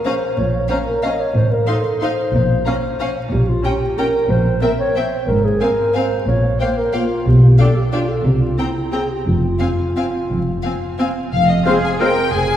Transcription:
0.05 0.14 C#4 soft
0.05 0.39 C5 medium
0.05 0.13 F5 soft
0.05 0.13 A#5 soft
0.37 0.63 A#1 medium
0.37 0.63 A#2 soft
0.37 0.69 C#5 medium
0.69 0.78 C#4 soft
0.69 0.77 C5 medium
0.69 0.77 F5 soft
0.69 0.78 A#5 soft
0.87 1.05 A#4 medium
1.03 1.11 C#4 soft
1.03 1.21 D#5 medium
1.03 1.11 F5 soft
1.03 1.11 A#5 soft
1.20 1.37 C#5 medium
1.34 1.60 A1 medium
1.34 1.60 A2 medium
1.34 1.53 C5 medium
1.51 1.69 A#4 medium
1.67 1.76 D#4 soft
1.67 2.02 A4 medium
1.67 1.76 F5 soft
1.67 1.75 C6 soft
2.01 2.10 D#4 soft
2.01 3.14 C5 medium
2.01 2.10 F5 soft
2.01 2.09 C6 soft
2.33 2.59 A#1 medium
2.33 2.58 A#2 medium
2.66 2.74 C#4 soft
2.66 2.74 F5 soft
2.66 2.74 A#5 soft
3.00 3.08 C#4 soft
3.00 3.08 F5 soft
3.00 3.08 A#5 soft
3.32 3.57 A#1 medium
3.32 3.57 A#2 medium
3.32 3.50 G4 medium
3.49 3.66 F4 medium
3.64 3.72 C#4 soft
3.64 4.00 G4 medium
3.64 3.73 G5 soft
3.64 3.73 A#5 soft
3.98 4.06 C#4 soft
3.98 4.32 A#4 medium
3.98 4.06 G5 soft
3.98 4.07 A#5 soft
4.30 4.55 A#1 medium
4.30 4.55 A#2 medium
4.30 4.62 C5 medium
4.62 4.70 C4 soft
4.62 4.70 A#4 medium
4.62 4.70 E5 soft
4.62 4.70 G5 soft
4.80 4.98 C#5 medium
4.96 5.05 C4 soft
4.96 5.30 C5 medium
4.96 5.04 E5 soft
4.96 5.05 G5 soft
5.28 5.54 G#1 medium
5.28 5.54 G#2 medium
5.28 5.46 A#4 medium
5.44 5.63 G#4 medium
5.61 5.69 C4 soft
5.61 5.96 A#4 medium
5.61 5.69 F5 soft
5.61 5.69 G#5 soft
5.94 6.03 C4 soft
5.94 6.27 C5 medium
5.94 6.03 F5 soft
5.94 6.02 G#5 soft
6.27 6.53 A#1 medium
6.27 6.52 A#2 medium
6.27 6.59 C#5 medium
6.59 6.68 A#3 soft
6.59 6.79 C5 medium
6.59 6.68 F5 soft
6.59 6.67 G5 soft
6.77 6.96 A#4 medium
6.94 7.02 A#3 soft
6.94 7.29 F4 medium
6.94 7.02 F5 soft
6.94 7.02 G5 soft
7.26 7.52 B1 medium
7.26 7.52 B2 medium
7.26 7.61 G4 medium
7.58 7.67 D4 soft
7.58 7.76 A4 medium
7.58 7.66 F5 soft
7.58 7.67 G5 soft
7.76 7.84 G4 medium
7.93 8.01 D4 soft
7.93 8.11 F4 medium
7.93 8.01 F5 soft
7.93 8.01 G5 soft
8.09 8.27 A4 medium
8.25 8.51 C2 soft
8.25 8.51 C3 medium
8.25 8.41 G4 soft
8.41 8.60 F4 soft
8.58 8.66 C4 soft
8.58 8.94 E4 medium
8.58 8.66 G5 soft
8.58 8.66 A#5 soft
8.92 9.00 C4 soft
8.92 9.12 G#4 medium
8.92 9.01 G5 soft
8.92 9.00 A#5 soft
9.10 9.26 G4 soft
9.26 9.53 F1 soft
9.26 9.53 F2 soft
9.26 10.96 F4 medium
9.60 9.68 C4 soft
9.60 9.68 F5 soft
9.60 9.69 G#5 soft
9.96 10.04 C4 soft
9.96 10.04 F5 soft
9.96 10.05 G#5 soft
10.30 10.57 F1 soft
10.30 10.57 F2 soft
10.63 10.71 C4 soft
10.63 10.72 F5 soft
10.63 10.73 G#5 soft
10.99 11.08 C4 soft
10.99 11.07 F5 soft
10.99 11.08 G#5 soft
11.33 11.60 F1 soft
11.33 11.48 F5 medium
11.49 11.66 D#5 medium
11.66 11.78 G#3 soft
11.66 11.79 G#3 soft
11.66 11.78 C4 soft
11.66 11.74 C4 soft
11.66 11.79 C4 soft
11.66 11.74 F4 soft
11.66 11.98 G#4 soft
11.66 11.74 G#4 soft
11.66 11.78 C5 soft
11.66 11.74 C5 soft
11.66 11.73 F5 medium
11.66 11.72 F6 soft
11.85 11.91 G#5 medium
12.00 12.12 G#3 soft
12.00 12.12 C4 soft
12.00 12.09 C4 soft
12.00 12.09 F4 soft
12.00 12.09 G#4 soft
12.00 12.33 A#4 soft
12.00 12.12 C5 soft
12.00 12.09 C5 soft
12.00 12.33 G5 medium
12.00 12.06 F6 soft
12.33 12.57 F1 soft
12.33 12.57 G#4 soft
12.33 12.57 G#5 medium

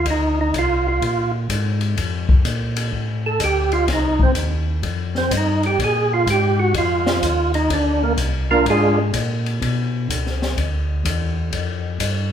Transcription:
0.05 0.52 D2 medium
0.05 kick soft
0.05 ride medium
0.10 0.39 D#4 medium
0.41 0.55 D#4 medium
0.54 1.00 C2 medium
0.54 kick soft
0.54 hi-hat pedal soft
0.54 ride medium
0.58 0.87 F4 medium
0.88 1.31 F4 medium
1.01 1.48 A#2 medium
1.01 kick soft
1.01 ride medium
1.49 1.96 G#2 medium
1.49 kick soft
1.49 hi-hat pedal medium
1.49 ride medium
1.81 ride soft
1.97 2.44 F2 medium
1.97 kick soft
1.97 ride medium
2.29 kick medium
2.45 2.92 A#2 medium
2.45 kick soft
2.45 hi-hat pedal soft
2.45 ride medium
2.77 ride medium
2.92 3.39 A2 medium
2.92 kick soft
3.26 3.41 A4 medium
3.40 3.87 D2 medium
3.40 3.73 G4 medium
3.40 kick soft
3.40 hi-hat pedal medium
3.40 ride medium
3.72 3.88 F4 medium
3.72 ride soft
3.88 4.35 C2 medium
3.88 kick soft
3.88 snare soft
3.88 ride medium
3.93 4.21 D#4 medium
4.20 4.32 C4 medium
4.20 kick soft
4.35 4.82 D#2 medium
4.35 kick soft
4.35 hi-hat pedal soft
4.35 ride medium
4.83 5.30 F2 medium
4.83 kick soft
4.83 ride medium
5.15 5.32 C4 medium
5.15 snare soft
5.31 5.78 G2 medium
5.31 kick soft
5.31 hi-hat pedal medium
5.31 ride medium
5.37 5.65 D#4 medium
5.63 5.81 G4 medium
5.63 ride soft
5.79 6.26 A#2 medium
5.79 kick soft
5.79 ride medium
5.84 6.12 G#4 medium
6.14 6.28 F4 medium
6.27 6.73 G#2 medium
6.27 6.60 G4 medium
6.27 kick soft
6.27 hi-hat pedal medium
6.27 ride medium
6.60 6.75 F#4 medium
6.74 7.21 F2 medium
6.74 7.52 F4 medium
6.74 kick soft
6.74 ride medium
7.07 snare medium
7.22 7.69 D#2 medium
7.22 kick soft
7.22 hi-hat pedal medium
7.22 ride medium
7.54 7.71 D#4 medium
7.54 ride soft
7.70 8.16 D2 medium
7.70 8.03 D4 medium
7.70 kick soft
7.70 ride medium
8.03 8.13 A#3 medium
8.17 8.64 C2 medium
8.17 kick soft
8.17 hi-hat pedal medium
8.17 ride medium
8.51 8.66 A#3 medium
8.51 8.66 D4 medium
8.51 8.66 F4 medium
8.51 8.66 A#4 medium
8.65 9.12 G#2 medium
8.65 kick soft
8.65 ride medium
8.70 8.99 G#3 medium
8.70 8.99 D4 medium
8.70 8.99 F4 medium
8.70 8.99 G#4 medium
9.13 9.60 A#2 medium
9.13 kick soft
9.13 hi-hat pedal medium
9.13 ride medium
9.46 ride soft
9.62 10.08 B2 medium
9.62 kick soft
9.62 ride medium
10.09 10.56 C#2 medium
10.09 kick soft
10.09 hi-hat pedal medium
10.09 ride medium
10.27 snare soft
10.42 snare soft
10.57 11.04 D2 medium
10.57 kick soft
10.57 ride medium
11.04 11.51 E2 medium
11.04 kick soft
11.04 hi-hat pedal medium
11.04 ride medium
11.52 11.98 F2 medium
11.52 kick soft
11.52 ride medium
12.00 12.32 G2 medium
12.00 kick soft
12.00 hi-hat pedal medium
12.00 ride medium

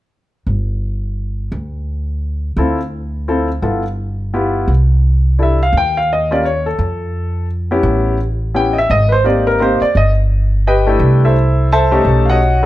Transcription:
0.46 1.48 G1 medium
1.52 2.53 D2 medium
2.57 3.58 D2 medium
2.57 2.77 C4 soft
2.57 2.77 E4 soft
2.57 2.78 F4 soft
2.57 2.78 A4 medium
3.28 3.47 C4 medium
3.28 3.48 E4 soft
3.28 3.48 F4 soft
3.28 3.48 A4 medium
3.62 4.64 G1 medium
3.62 3.82 B3 soft
3.62 3.82 E4 soft
3.62 3.82 F4 soft
3.62 3.82 A4 soft
4.34 4.68 B3 medium
4.34 4.68 E4 soft
4.34 4.69 F4 soft
4.34 4.69 G4 medium
4.68 5.69 C2 medium
5.39 5.58 D4 soft
5.39 5.58 E4 soft
5.39 5.58 G4 soft
5.39 5.58 A4 soft
5.43 5.62 E5 medium
5.63 5.74 F5 medium
5.73 6.74 D#2 medium
5.77 5.97 G5 medium
5.97 6.09 F5 medium
6.13 6.32 D#5 medium
6.31 6.43 A#3 medium
6.31 6.43 C#4 soft
6.31 6.43 F4 soft
6.31 6.43 G4 medium
6.31 6.44 D5 medium
6.45 6.66 C#5 medium
6.66 7.45 A4 medium
6.79 7.80 F2 medium
7.71 8.17 B3 medium
7.71 8.17 C#4 medium
7.71 8.17 E4 medium
7.71 8.17 G4 medium
7.83 8.85 A1 medium
8.54 8.74 B3 soft
8.54 8.74 C#4 soft
8.54 8.74 E4 soft
8.54 8.74 G4 medium
8.54 8.76 G5 medium
8.73 8.75 D#5 medium
8.78 8.90 E5 medium
8.90 9.77 G#1 medium
8.90 9.11 D#5 medium
9.09 9.11 B4 medium
9.09 9.25 C5 medium
9.24 9.58 A#3 medium
9.24 9.58 C4 soft
9.24 9.58 D#4 soft
9.24 9.59 G4 medium
9.24 9.46 D5 medium
9.47 9.60 A#4 medium
9.60 9.79 A#3 medium
9.60 9.79 C4 medium
9.60 9.80 D#4 soft
9.60 9.80 G4 medium
9.60 9.82 C5 medium
9.81 9.94 D5 medium
9.81 muted upright bass stroke soft
9.95 10.96 G1 medium
9.95 10.09 D#5 medium
10.67 10.86 G4 medium
10.67 11.19 B4 medium
10.67 10.99 D#5 medium
10.67 11.19 G5 medium
10.87 11.32 A3 medium
10.87 11.32 D4 medium
10.87 11.23 E4 medium
10.87 11.33 G4 medium
10.99 12.01 C2 medium
11.25 11.68 E4 soft
11.25 11.69 A4 medium
11.25 11.69 C5 medium
11.25 11.68 E5 medium
11.72 12.25 A4 medium
11.72 12.04 C5 medium
11.72 12.04 E5 medium
11.72 12.24 A5 medium
11.91 12.37 A3 medium
11.91 12.38 C#4 medium
11.91 12.38 D#4 medium
11.91 12.38 G4 medium
12.05 12.66 B1 medium
12.25 12.27 F5 medium
12.30 12.66 F#4 medium
12.30 12.66 C#5 medium
12.30 12.66 D#5 medium
12.30 12.66 F#5 medium

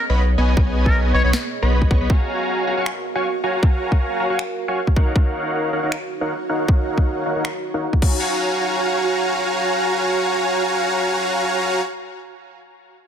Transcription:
0.00 2.07 B3 medium
0.00 2.07 G#4 medium
0.00 2.07 C#5 medium
0.00 2.07 D#5 medium
0.10 0.36 B1 medium
0.10 0.21 B3 medium
0.10 0.21 B4 medium
0.10 0.21 C#5 medium
0.10 0.21 D#5 medium
0.10 0.21 B5 medium
0.38 0.55 B1 medium
0.38 0.54 B3 medium
0.38 0.54 B4 medium
0.38 0.54 C#5 medium
0.38 0.54 D#5 medium
0.38 0.54 G#5 loud
0.57 1.12 B1 loud
0.57 1.12 B3 medium
0.57 1.12 B4 medium
0.57 1.12 C#5 medium
0.57 kick loud
0.86 0.98 A#4 medium
0.86 kick medium
1.14 1.22 B1 medium
1.14 1.22 B3 medium
1.14 1.22 B4 medium
1.14 1.22 C#5 medium
1.14 1.21 C#5 medium
1.14 1.22 D#5 medium
1.14 1.22 C#6 loud
1.24 1.34 B1 medium
1.24 1.36 B3 medium
1.24 1.36 B4 medium
1.24 1.30 C#5 medium
1.24 1.36 C#5 medium
1.24 1.36 D#5 medium
1.24 1.36 B5 loud
1.33 finger snap medium
1.33 snare loud
1.62 1.89 B1 medium
1.62 1.89 B3 medium
1.62 1.89 B4 medium
1.62 1.89 C#5 medium
1.62 1.89 D#5 medium
1.62 1.89 B5 medium
1.82 kick medium
1.91 1.99 B1 medium
1.91 1.98 B3 medium
1.91 1.98 B4 medium
1.91 1.98 C#5 medium
1.91 1.98 D#5 medium
1.91 1.98 C#6 loud
1.91 kick loud
2.01 2.08 B1 medium
2.01 2.08 B3 medium
2.01 2.08 B4 medium
2.01 2.08 C#5 medium
2.01 2.08 D#5 medium
2.01 2.08 B5 medium
2.10 2.65 F#4 medium
2.10 4.94 F#4 medium
2.10 4.94 A#4 medium
2.10 2.65 C#5 medium
2.10 4.94 F5 medium
2.10 2.65 F5 medium
2.10 2.65 G#5 medium
2.10 2.65 A#5 medium
2.10 kick loud
2.67 2.75 F#4 medium
2.67 2.75 C#5 medium
2.67 2.75 F5 medium
2.67 2.75 G#5 medium
2.67 2.75 A#5 medium
2.77 2.89 F#4 medium
2.77 2.89 C#5 medium
2.77 2.89 F5 medium
2.77 2.89 G#5 medium
2.77 2.89 C#6 loud
2.86 finger snap medium
3.15 3.27 F#4 medium
3.15 3.27 C#5 medium
3.15 3.27 F5 medium
3.15 3.27 G#5 medium
3.15 3.27 C#6 medium
3.44 3.60 F#4 medium
3.44 3.60 C#5 medium
3.44 3.60 F5 medium
3.44 3.60 G#5 medium
3.44 3.60 A#5 medium
3.63 4.18 F#4 medium
3.63 4.18 C#5 medium
3.63 4.18 F5 medium
3.63 4.18 G#5 medium
3.63 4.18 A#5 medium
3.63 kick loud
3.92 kick medium
4.20 4.28 F#4 medium
4.20 4.28 C#5 medium
4.20 4.28 F5 medium
4.20 4.28 G#5 medium
4.20 4.28 A#5 medium
4.30 4.42 F#4 medium
4.30 4.42 C#5 medium
4.30 4.42 F5 medium
4.30 4.42 G#5 medium
4.30 4.42 C#6 loud
4.39 finger snap medium
4.68 4.80 F#4 medium
4.68 4.80 C#5 medium
4.68 4.80 F5 medium
4.68 4.80 G#5 medium
4.68 4.80 C#6 medium
4.87 kick soft
4.96 5.13 D#4 medium
4.96 7.99 D#4 medium
4.96 7.99 F#4 medium
4.96 5.13 A#4 medium
4.96 5.13 C#5 medium
4.96 7.99 C#5 medium
4.96 5.13 F5 medium
4.96 5.13 F#5 medium
4.96 kick loud
5.16 5.71 D#4 medium
5.16 5.71 C#5 medium
5.16 kick loud
5.73 5.81 D#4 medium
5.73 5.81 A#4 medium
5.73 5.81 C#5 medium
5.73 5.81 F5 medium
5.73 5.81 F#5 medium
5.83 5.95 D#4 medium
5.83 5.95 A#4 medium
5.83 5.95 C#5 medium
5.83 5.95 F5 medium
5.83 5.95 F#5 loud
5.92 finger snap medium
6.21 6.33 D#4 medium
6.21 6.33 A#4 medium
6.21 6.33 C#5 medium
6.21 6.33 F5 medium
6.21 6.33 F#5 medium
6.49 6.66 D#4 medium
6.49 6.66 A#4 medium
6.49 6.66 C#5 medium
6.49 6.66 F5 medium
6.49 6.66 F#5 medium
6.68 kick loud
6.98 kick medium
7.26 7.33 D#4 medium
7.26 7.33 A#4 medium
7.26 7.33 C#5 medium
7.26 7.33 F5 medium
7.26 7.33 F#5 medium
7.36 7.48 D#4 medium
7.36 7.48 A#4 medium
7.36 7.48 C#5 medium
7.36 7.48 F5 medium
7.36 7.48 F#5 loud
7.45 finger snap medium
7.74 7.86 D#4 medium
7.74 7.86 A#4 medium
7.74 7.86 C#5 medium
7.74 7.86 F5 medium
7.74 7.86 F#5 medium
7.93 kick medium
8.02 11.81 F#4 medium
8.02 11.81 C#5 medium
8.02 11.81 F5 medium
8.02 11.81 G#5 medium
8.02 11.81 A#5 medium
8.02 kick loud
8.02 crash medium

